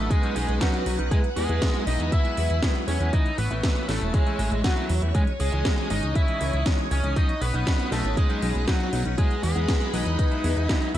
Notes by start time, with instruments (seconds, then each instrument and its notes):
Already playing: clean electric guitar F#3 B3 C#4 D#4, lead electric guitar A4, string machine B4 F#5 C#6 D#6
0.11 lead electric guitar G#3 G#4, kick, closed hi-hat
0.23 clean electric guitar F#3 B3 C#4 D#4, closed hi-hat
0.35 analog synth bass B1, clean electric guitar F#3 B3 C#4 D#4, lead electric guitar G#3 G#4, open hi-hat
0.48 analog synth bass B1, closed hi-hat
0.60 clean electric guitar F#3 B3 C#4 D#4, lead electric guitar F#3 F#4, kick, snare, closed hi-hat
0.74 closed hi-hat
0.86 analog synth bass B1, clean electric guitar F#3 B3 C#4 D#4, open hi-hat
0.98 analog synth bass B1, clean electric guitar F#3 B3 C#4 D#4, closed hi-hat
1.11 clean electric guitar F#3 G#3 B3 E4, lead electric guitar G#3 G#4, string machine G#5 E6, kick, closed hi-hat
1.24 closed hi-hat
1.36 analog synth bass E2, lead electric guitar G#3 G#4, open hi-hat
1.49 analog synth bass E2, clean electric guitar F#3 G#3 B3 E4, closed hi-hat
1.62 kick, snare, closed hi-hat
1.74 closed hi-hat
1.86 analog synth bass B1, clean electric guitar F#3 G#3 B3 E4, lead electric guitar D#4 D#5, open hi-hat
2.00 analog synth bass E2, closed hi-hat
2.12 lead electric guitar E4 E5, kick, closed hi-hat
2.24 clean electric guitar F#3 G#3 B3 E4, closed hi-hat
2.37 analog synth bass E2, clean electric guitar F#3 G#3 B3 E4, open hi-hat
2.50 analog synth bass E2, closed hi-hat
2.62 clean electric guitar F#3 G#3 B3 E4, kick, snare, closed hi-hat
2.75 closed hi-hat
2.87 analog synth bass E2, clean electric guitar F#3 G#3 B3 E4, lead electric guitar C#4 C#5, open hi-hat
3.00 analog synth bass E2, clean electric guitar F#3 G#3 B3 E4, closed hi-hat
3.13 clean electric guitar E3 A3 C#4 E4, lead electric guitar D#4 D#5, string machine C#5 C#6 E6, kick, closed hi-hat
3.26 closed hi-hat
3.38 analog synth bass A1, lead electric guitar B3 B4, open hi-hat
3.50 analog synth bass A1, clean electric guitar E3 A3 C#4 E4, closed hi-hat
3.63 kick, snare, closed hi-hat
3.76 closed hi-hat
3.88 analog synth bass A1, clean electric guitar E3 A3 C#4 E4, lead electric guitar A3 A4, snare, open hi-hat
4.01 analog synth bass E1, closed hi-hat
4.14 lead electric guitar G#3 G#4, kick, closed hi-hat
4.26 clean electric guitar E3 A3 C#4 E4, closed hi-hat
4.39 analog synth bass A1, clean electric guitar E3 A3 C#4 E4, open hi-hat
4.52 analog synth bass A1, closed hi-hat
4.64 clean electric guitar E3 A3 C#4 F#4, lead electric guitar F#3 F#4, kick, snare, closed hi-hat
4.76 clean electric guitar E3 A3 C#4 E4, closed hi-hat
4.89 analog synth bass E2, open hi-hat
5.02 analog synth bass E2, clean electric guitar E3 A3 C#4 E4, closed hi-hat
5.14 clean electric guitar E3 G#3 C#4 D#4, lead electric guitar G#3 G#4, string machine G#5 D#6, kick, closed hi-hat
5.27 closed hi-hat
5.40 analog synth bass C#2, lead electric guitar G#3 G#4, open hi-hat
5.52 analog synth bass C#2, clean electric guitar E3 G#3 C#4 D#4, closed hi-hat
5.65 kick, snare, closed hi-hat
5.78 closed hi-hat
5.90 analog synth bass G#1, clean electric guitar E3 G#3 C#4 D#4, lead electric guitar D#4 D#5, open hi-hat
6.03 analog synth bass C#2, closed hi-hat
6.15 lead electric guitar E4 E5, kick, closed hi-hat
6.28 clean electric guitar E3 G#3 C#4 D#4, closed hi-hat
6.40 analog synth bass C#2, clean electric guitar E3 G#3 C#4 D#4, open hi-hat
6.53 analog synth bass C#2, closed hi-hat
6.66 clean electric guitar E3 G#3 C#4 D#4, kick, snare, closed hi-hat
6.79 closed hi-hat
6.90 analog synth bass C#2, clean electric guitar E3 G#3 C#4 D#4, lead electric guitar C#4 C#5, open hi-hat
7.03 analog synth bass C#2, clean electric guitar E3 G#3 C#4 D#4, closed hi-hat
7.16 clean electric guitar F#3 B3 C#4 D#4, lead electric guitar D#4 D#5, string machine F#5 B5, kick, closed hi-hat
7.29 closed hi-hat
7.42 analog synth bass B1, lead electric guitar B3 B4, open hi-hat
7.54 analog synth bass B1, clean electric guitar F#3 B3 C#4 D#4, closed hi-hat
7.67 kick, snare, closed hi-hat
7.79 closed hi-hat
7.91 analog synth bass B1, clean electric guitar F#3 B3 C#4 D#4, lead electric guitar A3 A4, snare, open hi-hat
8.04 analog synth bass A1, closed hi-hat
8.17 lead electric guitar G#3 G#4, kick, closed hi-hat
8.29 clean electric guitar F#3 B3 C#4 D#4, closed hi-hat
8.42 analog synth bass B1, clean electric guitar F#3 B3 C#4 D#4, open hi-hat
8.55 analog synth bass B1, closed hi-hat
8.67 clean electric guitar F#3 B3 C#4 D#4, lead electric guitar F#3 F#4, kick, snare, closed hi-hat
8.80 closed hi-hat
8.92 analog synth bass B1, clean electric guitar F#3 B3 C#4 D#4, open hi-hat
9.05 analog synth bass B1, clean electric guitar F#3 B3 C#4 D#4, closed hi-hat
9.18 clean electric guitar F#3 G#3 B3 E4, lead electric guitar G#3 G#4, string machine B4 G#5 B5, kick, closed hi-hat
9.31 closed hi-hat
9.43 analog synth bass E2, lead electric guitar G#3 G#4, open hi-hat
9.55 analog synth bass E2, clean electric guitar F#3 G#3 B3 E4, closed hi-hat
9.68 kick, snare, closed hi-hat
9.81 closed hi-hat
9.93 analog synth bass B1, clean electric guitar E3 F#3 G#3 B3, lead electric guitar D#4 D#5, open hi-hat
10.06 analog synth bass E2, closed hi-hat
10.19 kick, closed hi-hat
10.31 clean electric guitar F#3 G#3 B3 E4, closed hi-hat
10.44 analog synth bass E2, clean electric guitar F#3 G#3 B3 E4, open hi-hat
10.57 analog synth bass E2, closed hi-hat
10.69 clean electric guitar F#3 G#3 B3 E4, kick, snare, closed hi-hat
10.82 closed hi-hat
10.94 analog synth bass E2, clean electric guitar B3 E4, lead electric guitar E5, open hi-hat